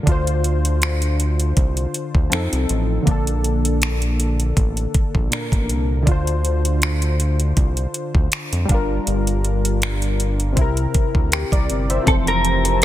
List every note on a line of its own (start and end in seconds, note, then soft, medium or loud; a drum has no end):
0.03 2.26 D3 medium
0.03 2.27 D4 medium
0.07 1.53 D2 loud
0.07 2.29 F4 medium
0.07 kick loud
0.07 closed hi-hat medium
0.12 2.30 C5 medium
0.27 closed hi-hat soft
0.44 closed hi-hat soft
0.65 closed hi-hat medium
0.82 finger snap loud
0.82 closed hi-hat medium
1.02 closed hi-hat soft
1.20 closed hi-hat medium
1.40 closed hi-hat soft
1.57 1.87 C2 medium
1.57 kick loud
1.57 closed hi-hat medium
1.77 closed hi-hat soft
1.94 closed hi-hat medium
2.15 2.28 D2 medium
2.15 kick medium
2.30 2.48 F2 medium
2.30 3.06 F3 medium
2.30 3.07 C4 medium
2.30 3.07 D#4 medium
2.30 finger snap loud
2.30 closed hi-hat medium
2.34 3.08 A4 medium
2.52 2.66 C2 medium
2.52 closed hi-hat medium
2.69 2.99 A1 medium
2.69 closed hi-hat medium
3.03 5.26 D3 medium
3.03 5.27 A#3 medium
3.07 4.53 A#1 loud
3.07 5.29 D4 medium
3.07 kick loud
3.07 closed hi-hat medium
3.11 5.30 A4 medium
3.27 closed hi-hat soft
3.44 closed hi-hat soft
3.65 closed hi-hat medium
3.82 finger snap loud
3.82 closed hi-hat medium
4.02 closed hi-hat soft
4.20 closed hi-hat medium
4.40 closed hi-hat soft
4.57 4.87 A1 loud
4.57 kick loud
4.57 closed hi-hat medium
4.77 closed hi-hat soft
4.94 kick medium
4.94 closed hi-hat medium
5.15 5.28 A#1 medium
5.15 kick medium
5.30 6.06 A#2 medium
5.30 6.07 A#3 soft
5.30 6.04 D4 medium
5.30 finger snap loud
5.30 closed hi-hat medium
5.34 6.08 A#4 medium
5.52 5.71 A1 medium
5.52 kick loud
5.52 closed hi-hat medium
5.69 6.09 C2 loud
5.69 closed hi-hat medium
6.03 8.63 D3 medium
6.03 8.65 D4 medium
6.07 7.53 D2 loud
6.07 8.66 F4 medium
6.07 kick loud
6.07 closed hi-hat medium
6.11 8.68 C5 medium
6.27 closed hi-hat soft
6.45 closed hi-hat soft
6.65 closed hi-hat medium
6.82 finger snap loud
6.82 closed hi-hat medium
7.02 closed hi-hat soft
7.20 closed hi-hat medium
7.40 closed hi-hat soft
7.57 7.87 C2 medium
7.57 kick loud
7.57 closed hi-hat medium
7.77 closed hi-hat soft
7.94 closed hi-hat medium
8.15 8.28 D2 medium
8.15 kick medium
8.32 finger snap loud
8.32 closed hi-hat medium
8.52 8.66 F2 medium
8.52 closed hi-hat medium
8.65 10.51 G3 medium
8.65 10.53 D4 medium
8.65 closed hi-hat medium
8.69 8.99 G1 loud
8.69 10.54 F4 medium
8.69 kick loud
8.74 10.56 A#4 medium
9.07 10.59 G1 loud
9.07 closed hi-hat medium
9.27 closed hi-hat soft
9.45 closed hi-hat soft
9.65 closed hi-hat medium
9.82 finger snap loud
9.82 closed hi-hat medium
10.02 closed hi-hat soft
10.20 closed hi-hat medium
10.40 closed hi-hat soft
10.53 12.02 C3 medium
10.53 12.03 C4 medium
10.57 10.87 C2 loud
10.57 12.05 E4 medium
10.57 kick medium
10.57 closed hi-hat medium
10.61 11.31 A#4 medium
10.77 closed hi-hat soft
10.94 kick medium
10.94 closed hi-hat medium
11.15 11.45 D2 medium
11.15 kick medium
11.32 11.52 G4 medium
11.32 11.51 A#4 medium
11.32 finger snap loud
11.32 closed hi-hat medium
11.52 11.71 C2 medium
11.52 11.88 A#4 medium
11.52 11.88 D5 medium
11.52 kick loud
11.52 closed hi-hat medium
11.70 11.99 G1 medium
11.70 closed hi-hat medium
11.90 12.10 C5 medium
11.90 12.25 E5 medium
11.90 closed hi-hat soft
12.03 12.85 F3 medium
12.03 12.85 C4 medium
12.07 12.85 F1 loud
12.07 12.85 C3 medium
12.07 12.85 E3 medium
12.07 12.85 C4 medium
12.07 12.85 G4 medium
12.07 12.13 A4 medium
12.07 12.85 A5 loud
12.07 kick loud
12.07 closed hi-hat medium
12.12 12.85 C5 medium
12.27 12.82 A#4 medium
12.27 closed hi-hat soft
12.45 closed hi-hat soft
12.65 closed hi-hat medium